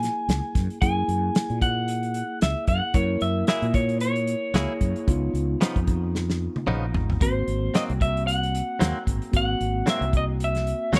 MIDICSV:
0, 0, Header, 1, 6, 480
1, 0, Start_track
1, 0, Tempo, 532387
1, 739, Time_signature, 4, 2, 24, 8
1, 9916, End_track
2, 0, Start_track
2, 0, Title_t, "Clean electric guitar"
2, 0, Program_c, 0, 27
2, 0, Note_on_c, 0, 80, 102
2, 724, Note_off_c, 0, 80, 0
2, 735, Note_on_c, 0, 80, 100
2, 1458, Note_off_c, 0, 80, 0
2, 1461, Note_on_c, 0, 78, 102
2, 2183, Note_off_c, 0, 78, 0
2, 2187, Note_on_c, 0, 76, 85
2, 2416, Note_off_c, 0, 76, 0
2, 2420, Note_on_c, 0, 78, 86
2, 2654, Note_on_c, 0, 73, 80
2, 2668, Note_off_c, 0, 78, 0
2, 2902, Note_on_c, 0, 76, 85
2, 2905, Note_off_c, 0, 73, 0
2, 3125, Note_off_c, 0, 76, 0
2, 3138, Note_on_c, 0, 76, 89
2, 3363, Note_off_c, 0, 76, 0
2, 3379, Note_on_c, 0, 73, 79
2, 3607, Note_off_c, 0, 73, 0
2, 3618, Note_on_c, 0, 73, 71
2, 5024, Note_off_c, 0, 73, 0
2, 6511, Note_on_c, 0, 72, 77
2, 6992, Note_on_c, 0, 75, 79
2, 6999, Note_off_c, 0, 72, 0
2, 7055, Note_off_c, 0, 75, 0
2, 7229, Note_on_c, 0, 76, 96
2, 7452, Note_off_c, 0, 76, 0
2, 7456, Note_on_c, 0, 78, 100
2, 8140, Note_off_c, 0, 78, 0
2, 8444, Note_on_c, 0, 78, 111
2, 8921, Note_off_c, 0, 78, 0
2, 8925, Note_on_c, 0, 76, 95
2, 9157, Note_off_c, 0, 76, 0
2, 9169, Note_on_c, 0, 75, 99
2, 9229, Note_off_c, 0, 75, 0
2, 9415, Note_on_c, 0, 76, 98
2, 9880, Note_off_c, 0, 76, 0
2, 9883, Note_on_c, 0, 75, 95
2, 9916, Note_off_c, 0, 75, 0
2, 9916, End_track
3, 0, Start_track
3, 0, Title_t, "Tine electric piano"
3, 0, Program_c, 1, 4
3, 0, Note_on_c, 1, 58, 60
3, 0, Note_on_c, 1, 64, 51
3, 0, Note_on_c, 1, 68, 65
3, 699, Note_off_c, 1, 58, 0
3, 702, Note_off_c, 1, 64, 0
3, 705, Note_off_c, 1, 68, 0
3, 738, Note_on_c, 1, 58, 54
3, 745, Note_on_c, 1, 64, 54
3, 749, Note_on_c, 1, 68, 66
3, 2625, Note_off_c, 1, 58, 0
3, 2628, Note_off_c, 1, 64, 0
3, 2630, Note_off_c, 1, 68, 0
3, 2649, Note_on_c, 1, 58, 55
3, 2654, Note_on_c, 1, 64, 59
3, 2662, Note_on_c, 1, 70, 59
3, 4067, Note_off_c, 1, 58, 0
3, 4070, Note_off_c, 1, 64, 0
3, 4073, Note_off_c, 1, 70, 0
3, 4100, Note_on_c, 1, 58, 53
3, 4105, Note_on_c, 1, 68, 54
3, 4106, Note_on_c, 1, 64, 46
3, 4572, Note_on_c, 1, 59, 66
3, 4581, Note_off_c, 1, 58, 0
3, 4582, Note_on_c, 1, 63, 55
3, 4583, Note_off_c, 1, 68, 0
3, 4584, Note_off_c, 1, 64, 0
3, 4585, Note_on_c, 1, 65, 75
3, 6460, Note_off_c, 1, 59, 0
3, 6465, Note_off_c, 1, 63, 0
3, 6466, Note_off_c, 1, 65, 0
3, 6497, Note_on_c, 1, 58, 54
3, 6508, Note_on_c, 1, 60, 53
3, 6513, Note_on_c, 1, 66, 60
3, 8380, Note_off_c, 1, 58, 0
3, 8385, Note_off_c, 1, 60, 0
3, 8388, Note_off_c, 1, 66, 0
3, 8399, Note_on_c, 1, 58, 54
3, 8407, Note_on_c, 1, 60, 49
3, 8413, Note_on_c, 1, 66, 63
3, 9916, Note_off_c, 1, 58, 0
3, 9916, Note_off_c, 1, 60, 0
3, 9916, Note_off_c, 1, 66, 0
3, 9916, End_track
4, 0, Start_track
4, 0, Title_t, "Clean electric guitar"
4, 0, Program_c, 2, 27
4, 3137, Note_on_c, 2, 54, 72
4, 3143, Note_on_c, 2, 58, 69
4, 3144, Note_on_c, 2, 64, 82
4, 3151, Note_on_c, 2, 68, 80
4, 3295, Note_off_c, 2, 54, 0
4, 3297, Note_off_c, 2, 58, 0
4, 3298, Note_off_c, 2, 64, 0
4, 3301, Note_off_c, 2, 68, 0
4, 4095, Note_on_c, 2, 54, 74
4, 4105, Note_on_c, 2, 58, 86
4, 4108, Note_on_c, 2, 68, 93
4, 4109, Note_on_c, 2, 64, 89
4, 4254, Note_off_c, 2, 54, 0
4, 4259, Note_off_c, 2, 58, 0
4, 4260, Note_off_c, 2, 64, 0
4, 4260, Note_off_c, 2, 68, 0
4, 5057, Note_on_c, 2, 49, 84
4, 5062, Note_on_c, 2, 53, 90
4, 5067, Note_on_c, 2, 59, 78
4, 5071, Note_on_c, 2, 63, 87
4, 5214, Note_off_c, 2, 49, 0
4, 5217, Note_off_c, 2, 53, 0
4, 5219, Note_off_c, 2, 59, 0
4, 5221, Note_off_c, 2, 63, 0
4, 6012, Note_on_c, 2, 49, 94
4, 6017, Note_on_c, 2, 53, 88
4, 6021, Note_on_c, 2, 59, 82
4, 6025, Note_on_c, 2, 63, 89
4, 6172, Note_off_c, 2, 49, 0
4, 6174, Note_off_c, 2, 53, 0
4, 6176, Note_off_c, 2, 59, 0
4, 6178, Note_off_c, 2, 63, 0
4, 6979, Note_on_c, 2, 44, 59
4, 6986, Note_on_c, 2, 54, 69
4, 6989, Note_on_c, 2, 58, 74
4, 6992, Note_on_c, 2, 60, 81
4, 7134, Note_off_c, 2, 44, 0
4, 7138, Note_off_c, 2, 54, 0
4, 7140, Note_off_c, 2, 58, 0
4, 7141, Note_off_c, 2, 60, 0
4, 7929, Note_on_c, 2, 44, 78
4, 7937, Note_on_c, 2, 54, 76
4, 7939, Note_on_c, 2, 58, 93
4, 7945, Note_on_c, 2, 60, 87
4, 8089, Note_off_c, 2, 44, 0
4, 8092, Note_off_c, 2, 54, 0
4, 8094, Note_off_c, 2, 58, 0
4, 8097, Note_off_c, 2, 60, 0
4, 8891, Note_on_c, 2, 44, 69
4, 8894, Note_on_c, 2, 54, 72
4, 8900, Note_on_c, 2, 58, 82
4, 8903, Note_on_c, 2, 60, 78
4, 9049, Note_off_c, 2, 44, 0
4, 9050, Note_off_c, 2, 54, 0
4, 9053, Note_off_c, 2, 58, 0
4, 9055, Note_off_c, 2, 60, 0
4, 9851, Note_on_c, 2, 44, 76
4, 9854, Note_on_c, 2, 54, 85
4, 9860, Note_on_c, 2, 58, 90
4, 9865, Note_on_c, 2, 60, 84
4, 9916, Note_off_c, 2, 44, 0
4, 9916, Note_off_c, 2, 54, 0
4, 9916, Note_off_c, 2, 58, 0
4, 9916, Note_off_c, 2, 60, 0
4, 9916, End_track
5, 0, Start_track
5, 0, Title_t, "Fretless electric bass"
5, 0, Program_c, 3, 35
5, 256, Note_on_c, 3, 37, 81
5, 361, Note_off_c, 3, 37, 0
5, 498, Note_on_c, 3, 42, 83
5, 602, Note_off_c, 3, 42, 0
5, 738, Note_on_c, 3, 42, 91
5, 925, Note_off_c, 3, 42, 0
5, 975, Note_on_c, 3, 42, 77
5, 1164, Note_off_c, 3, 42, 0
5, 1352, Note_on_c, 3, 46, 82
5, 1996, Note_off_c, 3, 46, 0
5, 2185, Note_on_c, 3, 37, 81
5, 2287, Note_off_c, 3, 37, 0
5, 2413, Note_on_c, 3, 42, 84
5, 2521, Note_off_c, 3, 42, 0
5, 2654, Note_on_c, 3, 42, 90
5, 2844, Note_off_c, 3, 42, 0
5, 2899, Note_on_c, 3, 42, 80
5, 3086, Note_off_c, 3, 42, 0
5, 3265, Note_on_c, 3, 46, 90
5, 3912, Note_off_c, 3, 46, 0
5, 4091, Note_on_c, 3, 37, 76
5, 4199, Note_off_c, 3, 37, 0
5, 4334, Note_on_c, 3, 42, 84
5, 4441, Note_off_c, 3, 42, 0
5, 4575, Note_on_c, 3, 37, 84
5, 4764, Note_off_c, 3, 37, 0
5, 4811, Note_on_c, 3, 37, 78
5, 5002, Note_off_c, 3, 37, 0
5, 5191, Note_on_c, 3, 41, 81
5, 5835, Note_off_c, 3, 41, 0
5, 6012, Note_on_c, 3, 34, 71
5, 6232, Note_off_c, 3, 34, 0
5, 6256, Note_on_c, 3, 32, 86
5, 6474, Note_off_c, 3, 32, 0
5, 6503, Note_on_c, 3, 32, 94
5, 6689, Note_off_c, 3, 32, 0
5, 6740, Note_on_c, 3, 32, 76
5, 6927, Note_off_c, 3, 32, 0
5, 7121, Note_on_c, 3, 36, 94
5, 7760, Note_off_c, 3, 36, 0
5, 7941, Note_on_c, 3, 39, 71
5, 8044, Note_off_c, 3, 39, 0
5, 8179, Note_on_c, 3, 32, 80
5, 8283, Note_off_c, 3, 32, 0
5, 8417, Note_on_c, 3, 32, 78
5, 8603, Note_off_c, 3, 32, 0
5, 8661, Note_on_c, 3, 32, 76
5, 8846, Note_off_c, 3, 32, 0
5, 9024, Note_on_c, 3, 36, 86
5, 9668, Note_off_c, 3, 36, 0
5, 9849, Note_on_c, 3, 39, 79
5, 9916, Note_off_c, 3, 39, 0
5, 9916, End_track
6, 0, Start_track
6, 0, Title_t, "Drums"
6, 24, Note_on_c, 9, 42, 61
6, 32, Note_on_c, 9, 38, 35
6, 114, Note_off_c, 9, 42, 0
6, 122, Note_off_c, 9, 38, 0
6, 260, Note_on_c, 9, 42, 76
6, 268, Note_on_c, 9, 38, 86
6, 350, Note_off_c, 9, 42, 0
6, 358, Note_off_c, 9, 38, 0
6, 497, Note_on_c, 9, 36, 76
6, 497, Note_on_c, 9, 42, 60
6, 505, Note_on_c, 9, 38, 36
6, 587, Note_off_c, 9, 42, 0
6, 588, Note_off_c, 9, 36, 0
6, 595, Note_off_c, 9, 38, 0
6, 634, Note_on_c, 9, 42, 37
6, 724, Note_off_c, 9, 42, 0
6, 738, Note_on_c, 9, 36, 107
6, 739, Note_on_c, 9, 42, 83
6, 828, Note_off_c, 9, 36, 0
6, 829, Note_off_c, 9, 42, 0
6, 980, Note_on_c, 9, 42, 55
6, 1070, Note_off_c, 9, 42, 0
6, 1218, Note_on_c, 9, 42, 77
6, 1226, Note_on_c, 9, 38, 114
6, 1308, Note_off_c, 9, 42, 0
6, 1316, Note_off_c, 9, 38, 0
6, 1350, Note_on_c, 9, 42, 33
6, 1440, Note_off_c, 9, 42, 0
6, 1456, Note_on_c, 9, 36, 88
6, 1458, Note_on_c, 9, 42, 62
6, 1546, Note_off_c, 9, 36, 0
6, 1548, Note_off_c, 9, 42, 0
6, 1694, Note_on_c, 9, 42, 79
6, 1784, Note_off_c, 9, 42, 0
6, 1829, Note_on_c, 9, 42, 38
6, 1919, Note_off_c, 9, 42, 0
6, 1931, Note_on_c, 9, 42, 62
6, 2021, Note_off_c, 9, 42, 0
6, 2175, Note_on_c, 9, 42, 71
6, 2183, Note_on_c, 9, 38, 98
6, 2265, Note_off_c, 9, 42, 0
6, 2273, Note_off_c, 9, 38, 0
6, 2410, Note_on_c, 9, 42, 60
6, 2413, Note_on_c, 9, 36, 76
6, 2500, Note_off_c, 9, 42, 0
6, 2503, Note_off_c, 9, 36, 0
6, 2650, Note_on_c, 9, 42, 82
6, 2653, Note_on_c, 9, 36, 112
6, 2740, Note_off_c, 9, 42, 0
6, 2743, Note_off_c, 9, 36, 0
6, 2891, Note_on_c, 9, 42, 56
6, 2982, Note_off_c, 9, 42, 0
6, 3130, Note_on_c, 9, 42, 77
6, 3138, Note_on_c, 9, 38, 100
6, 3220, Note_off_c, 9, 42, 0
6, 3228, Note_off_c, 9, 38, 0
6, 3267, Note_on_c, 9, 42, 37
6, 3357, Note_off_c, 9, 42, 0
6, 3370, Note_on_c, 9, 42, 71
6, 3373, Note_on_c, 9, 36, 89
6, 3460, Note_off_c, 9, 42, 0
6, 3463, Note_off_c, 9, 36, 0
6, 3506, Note_on_c, 9, 42, 35
6, 3596, Note_off_c, 9, 42, 0
6, 3610, Note_on_c, 9, 42, 85
6, 3700, Note_off_c, 9, 42, 0
6, 3747, Note_on_c, 9, 42, 40
6, 3837, Note_off_c, 9, 42, 0
6, 3853, Note_on_c, 9, 42, 62
6, 3943, Note_off_c, 9, 42, 0
6, 4093, Note_on_c, 9, 42, 78
6, 4102, Note_on_c, 9, 38, 89
6, 4184, Note_off_c, 9, 42, 0
6, 4192, Note_off_c, 9, 38, 0
6, 4335, Note_on_c, 9, 42, 60
6, 4336, Note_on_c, 9, 36, 66
6, 4425, Note_off_c, 9, 42, 0
6, 4427, Note_off_c, 9, 36, 0
6, 4470, Note_on_c, 9, 42, 38
6, 4560, Note_off_c, 9, 42, 0
6, 4578, Note_on_c, 9, 36, 103
6, 4578, Note_on_c, 9, 42, 75
6, 4668, Note_off_c, 9, 36, 0
6, 4668, Note_off_c, 9, 42, 0
6, 4822, Note_on_c, 9, 42, 56
6, 4912, Note_off_c, 9, 42, 0
6, 5058, Note_on_c, 9, 42, 82
6, 5066, Note_on_c, 9, 38, 108
6, 5148, Note_off_c, 9, 42, 0
6, 5156, Note_off_c, 9, 38, 0
6, 5193, Note_on_c, 9, 36, 72
6, 5193, Note_on_c, 9, 42, 33
6, 5283, Note_off_c, 9, 36, 0
6, 5283, Note_off_c, 9, 42, 0
6, 5296, Note_on_c, 9, 42, 62
6, 5299, Note_on_c, 9, 36, 94
6, 5386, Note_off_c, 9, 42, 0
6, 5389, Note_off_c, 9, 36, 0
6, 5546, Note_on_c, 9, 38, 57
6, 5636, Note_off_c, 9, 38, 0
6, 5677, Note_on_c, 9, 38, 62
6, 5767, Note_off_c, 9, 38, 0
6, 5913, Note_on_c, 9, 48, 63
6, 6004, Note_off_c, 9, 48, 0
6, 6020, Note_on_c, 9, 47, 77
6, 6110, Note_off_c, 9, 47, 0
6, 6261, Note_on_c, 9, 43, 95
6, 6351, Note_off_c, 9, 43, 0
6, 6398, Note_on_c, 9, 43, 85
6, 6489, Note_off_c, 9, 43, 0
6, 6501, Note_on_c, 9, 36, 106
6, 6501, Note_on_c, 9, 42, 84
6, 6591, Note_off_c, 9, 42, 0
6, 6592, Note_off_c, 9, 36, 0
6, 6740, Note_on_c, 9, 42, 55
6, 6830, Note_off_c, 9, 42, 0
6, 6981, Note_on_c, 9, 42, 85
6, 6989, Note_on_c, 9, 38, 96
6, 7071, Note_off_c, 9, 42, 0
6, 7080, Note_off_c, 9, 38, 0
6, 7118, Note_on_c, 9, 42, 35
6, 7208, Note_off_c, 9, 42, 0
6, 7222, Note_on_c, 9, 36, 93
6, 7223, Note_on_c, 9, 42, 66
6, 7312, Note_off_c, 9, 36, 0
6, 7313, Note_off_c, 9, 42, 0
6, 7365, Note_on_c, 9, 42, 36
6, 7455, Note_off_c, 9, 42, 0
6, 7465, Note_on_c, 9, 42, 84
6, 7555, Note_off_c, 9, 42, 0
6, 7603, Note_on_c, 9, 42, 43
6, 7693, Note_off_c, 9, 42, 0
6, 7705, Note_on_c, 9, 42, 71
6, 7795, Note_off_c, 9, 42, 0
6, 7941, Note_on_c, 9, 42, 87
6, 7949, Note_on_c, 9, 38, 93
6, 8032, Note_off_c, 9, 42, 0
6, 8040, Note_off_c, 9, 38, 0
6, 8178, Note_on_c, 9, 36, 72
6, 8182, Note_on_c, 9, 42, 67
6, 8268, Note_off_c, 9, 36, 0
6, 8272, Note_off_c, 9, 42, 0
6, 8311, Note_on_c, 9, 42, 38
6, 8401, Note_off_c, 9, 42, 0
6, 8414, Note_on_c, 9, 42, 76
6, 8417, Note_on_c, 9, 36, 104
6, 8504, Note_off_c, 9, 42, 0
6, 8507, Note_off_c, 9, 36, 0
6, 8661, Note_on_c, 9, 42, 52
6, 8751, Note_off_c, 9, 42, 0
6, 8895, Note_on_c, 9, 42, 74
6, 8903, Note_on_c, 9, 38, 97
6, 8986, Note_off_c, 9, 42, 0
6, 8994, Note_off_c, 9, 38, 0
6, 9033, Note_on_c, 9, 42, 34
6, 9123, Note_off_c, 9, 42, 0
6, 9135, Note_on_c, 9, 36, 83
6, 9136, Note_on_c, 9, 42, 64
6, 9225, Note_off_c, 9, 36, 0
6, 9226, Note_off_c, 9, 42, 0
6, 9378, Note_on_c, 9, 42, 75
6, 9469, Note_off_c, 9, 42, 0
6, 9509, Note_on_c, 9, 42, 38
6, 9517, Note_on_c, 9, 38, 33
6, 9599, Note_off_c, 9, 42, 0
6, 9607, Note_off_c, 9, 38, 0
6, 9618, Note_on_c, 9, 42, 59
6, 9709, Note_off_c, 9, 42, 0
6, 9856, Note_on_c, 9, 42, 71
6, 9864, Note_on_c, 9, 38, 89
6, 9916, Note_off_c, 9, 38, 0
6, 9916, Note_off_c, 9, 42, 0
6, 9916, End_track
0, 0, End_of_file